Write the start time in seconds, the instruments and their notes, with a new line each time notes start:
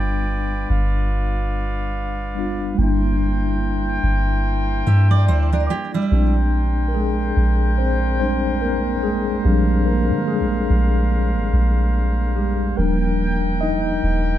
Already playing: 808-style bass G1, tine electric piano G3 B3 D4 F4, brass ensemble F4 B4 D5 G5
0.70 808-style bass G1, brass ensemble F5
2.35 tine electric piano G3 B3 D4
2.39 tine electric piano F4
2.75 808-style bass G1, tine electric piano G3 A#3, brass ensemble A#4 C5 G5
2.79 tine electric piano D4, brass ensemble E4
2.83 tine electric piano E4
4.03 808-style bass G1
4.87 808-style bass G2, steel-string acoustic guitar G4 E5
5.11 steel-string acoustic guitar D5
5.28 808-style bass D2, steel-string acoustic guitar E4 C5
5.53 steel-string acoustic guitar D4 A#4
5.70 steel-string acoustic guitar A#3 G4
5.94 steel-string acoustic guitar G3 E4
6.12 808-style bass A#1, tine electric piano G#3 C4 D4 G4, brass ensemble D4 A#4 C5 G5
6.88 tine electric piano A#4
6.95 tine electric piano G#3 G#4
7.37 808-style bass A#1
7.78 tine electric piano C4 C5
8.20 tine electric piano G3 G#3 C4 D4 C5
8.61 tine electric piano A#3 A#4
9.03 tine electric piano G#3 G#4
9.44 808-style bass A#1, tine electric piano F3 G3 G#3 C4 D4 G4, brass ensemble F5
9.86 tine electric piano A#3 A#4
10.11 808-style bass D3
10.28 tine electric piano G#3 G#4
10.40 808-style bass A#1
10.70 808-style bass A#1
11.35 808-style bass G#1
11.53 808-style bass A#1
12.36 tine electric piano G3 G4
12.77 808-style bass D#1, brass ensemble D#3 A#4 G5, tine electric piano F3 G3 A#3 D4 A#4
13.61 tine electric piano D#4 D#5
14.03 808-style bass D#1